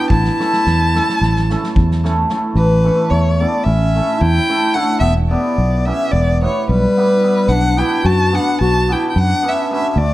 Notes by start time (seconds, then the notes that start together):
Already playing: G5
0.10 A1 E4 A5, kick
0.25 snare
0.40 A3 C#4 E4 A4, snare
0.53 snare
0.66 E2, snare
0.95 A3 C#4 E4 A4, snare
1.09 snare
1.21 A1, snare
1.36 snare
1.50 A3 C#4 E4 A4, snare
1.64 snare
1.76 E2, kick
1.91 snare
2.04 A3 C#4 E4 A4, snare
2.29 A3 C#4 E4 A4, snare
2.54 A1 E3 B4
2.84 A3 C#4 E4 A4
3.10 E2 A3 C#5
3.40 A3 B3 C#4 E4 A4 D5
3.64 A1 C#4 E5
3.95 A3 C#4 E4 A4
4.19 E2 E4 G5
4.49 A3 C#4 E4 A4
4.74 A3 C#4 D4 E4 A4 F#5
4.99 E1 B3 E5
5.29 B3 E4 G4 B4 D5
5.58 B1
5.85 B3 C#4 E4 G4 B4 E5
6.11 E1 B3 D5
6.42 A3 B3 E4 G4 B4 C#5
6.69 B1 G3 B4
6.97 B3 E4 G4 B4
7.23 B3 E4 G4 B4
7.48 B1 D4 F#5
7.77 B3 D4 E4 F#4 B4 G5
8.04 F#2 F#4 A5
8.32 B3 D4 F#4 B4 F#5
8.61 B1 F#4 A5
8.89 B3 D4 E4 F#4 B4 G5
9.10 E4 G5
9.16 F#2 D4 F#5
9.42 B3 C#4 D4 F#4 B4
9.48 E5
9.70 B3 C#4 D4 F#4 B4 E5
9.89 C#4 E5
9.96 D2 A3 D5